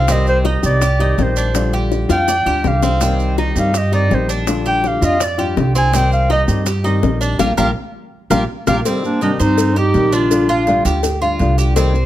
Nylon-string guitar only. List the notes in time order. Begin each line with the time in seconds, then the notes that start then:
0.08 C3 D#3 G3 C4 G4
0.63 D#3 G3 C4 G4
0.82 muted nylon-string guitar stroke
0.99 D#3 G3 C4 G4
1.18 D#3 G3 C4 G4
1.54 D3 G3 D4 F4
2.09 G3 D4 F4
2.28 muted nylon-string guitar stroke
2.46 G3 D4 F4
2.64 D3 G3 D4 F4
3.01 C3 D#3 G3 C4 G4
3.56 D#3 G3 C4 G4
3.74 muted nylon-string guitar stroke
3.92 D#3 G3 C4 G4
4.10 D#3 G3 C4 G4
4.47 D3 G3 D4 F4
5.01 G3 D4 F4
5.20 muted nylon-string guitar stroke
5.38 G3 D4 F4
5.56 D3 G3 D4 F4
5.92 C3 D#3 G3 C4 G4
6.48 D#3 G3 C4 G4
6.66 muted nylon-string guitar stroke
6.84 D#3 G3 C4 G4
7.03 D#3 G3 C4 G4
7.39 G3 A#3 D4
7.57 G3 A#3 D4
8.31 G3 A#3 D4
8.67 G3 A#3 D4
8.85 C3 D#3 G3 C4 G4
9.03 G3 C4 G4
9.21 C3 D#3 G3 C4 G4
9.41 G3 C4
9.58 muted nylon-string guitar stroke
9.76 G3 C4 G4
9.94 C3 D#3 G3 C4 G4
10.30 D3 G3 D4 F4
10.49 G3 D4 F4
10.67 D3 G3 D4 F4
10.85 G3 D4 F4
11.03 muted nylon-string guitar stroke
11.21 G3 D4 F4
11.40 D3 G3 D4 F4
11.76 C3 D#3 G3 C4 G4
11.94 G3 C4 G4